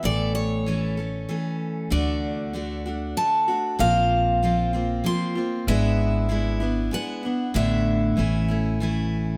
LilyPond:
<<
  \new Staff \with { instrumentName = "Steel-string acoustic guitar" } { \time 3/4 \key a \mixolydian \tempo 4 = 96 d''8 cis''2 r8 | d''2 a''4 | f''2 c'''4 | e''2 fis''4 |
e''2 r4 | }
  \new Staff \with { instrumentName = "Steel-string acoustic guitar" } { \time 3/4 \key a \mixolydian <a, e a a'>4 <e a cis' a'>8 <a cis' a'>8 <e a cis' a'>4 | <d a d' fis'>4 <d a d' fis'>8 <a d' fis'>8 <d a d' fis'>8 <a d' fis'>8 | <bes, f bes c' f'>4 <f bes c' f'>8 <bes c' f'>8 <f bes c' f'>8 <bes c' f'>8 | <gis b d' e'>4 <gis b d' e'>8 <b d' e'>8 <gis b d' e'>8 <b d' e'>8 |
<a, d a d' e'>4 <e a cis' e'>8 <a cis' e'>8 <e a cis' e'>4 | }
  \new Staff \with { instrumentName = "Upright bass" } { \clef bass \time 3/4 \key a \mixolydian a,,2 r4 | d,2 r4 | bes,,2 r4 | gis,,2 r4 |
a,,4 a,,2 | }
>>